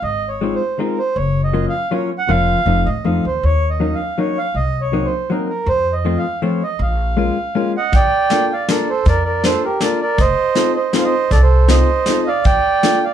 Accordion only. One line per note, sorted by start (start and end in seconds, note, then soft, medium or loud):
0.03 0.29 D#5 loud
0.28 0.54 C#5 medium
0.54 0.80 C5 medium
0.78 0.99 A#4 medium
0.98 1.17 C5 medium
1.16 1.42 C#5 medium
1.44 1.66 D#5 medium
1.69 1.94 F5 loud
1.93 2.10 C#5 medium
2.18 2.30 F#5 medium
2.30 2.88 F5 loud
2.86 3.05 D#5 medium
3.05 3.25 F5 medium
3.27 3.44 C5 medium
3.45 3.70 C#5 medium
3.70 3.95 D#5 medium
3.94 4.19 F5 medium
4.19 4.38 C#5 medium
4.38 4.56 F5 medium
4.56 4.81 D#5 medium
4.81 5.06 C#5 medium
5.05 5.31 C5 medium
5.31 5.48 A#4 medium
5.49 5.68 A#4 medium
5.69 5.94 C5 loud
5.93 6.19 D#5 medium
6.18 6.41 F5 medium
6.43 6.63 C#5 medium
6.63 6.81 D#5 medium
6.82 7.72 F5 medium
7.77 7.93 D#5 medium
7.77 7.95 F#5 medium
7.95 8.48 D5 medium
7.95 8.53 G5 loud
8.52 8.68 D5 medium
8.52 8.70 F5 medium
8.69 8.88 A#4 soft
8.69 8.89 D5 medium
8.90 9.06 A4 medium
8.90 9.08 C5 medium
9.08 9.24 A#4 medium
9.08 9.23 D5 medium
9.24 9.43 A#4 soft
9.24 9.44 D5 medium
9.44 9.62 A4 medium
9.44 9.64 C5 medium
9.64 9.81 G4 medium
9.64 9.80 A#4 medium
9.82 10.00 A#4 medium
9.82 9.99 D5 medium
10.01 10.18 A#4 medium
10.01 10.20 D5 medium
10.19 10.73 C5 medium
10.19 10.74 D#5 loud
10.76 10.93 C5 medium
10.76 10.93 D#5 medium
10.95 11.04 C5 soft
10.95 11.05 F5 medium
11.04 11.31 C5 medium
11.04 11.30 D#5 loud
11.31 11.41 A4 medium
11.31 11.42 D5 medium
11.42 11.68 A4 medium
11.42 11.69 C5 medium
11.70 12.24 C5 medium
11.70 12.29 D#5 medium
12.27 12.45 D5 medium
12.27 12.46 F5 medium
12.46 12.99 D5 medium
12.46 13.05 G5 loud
13.04 13.14 D5 medium
13.04 13.14 F5 medium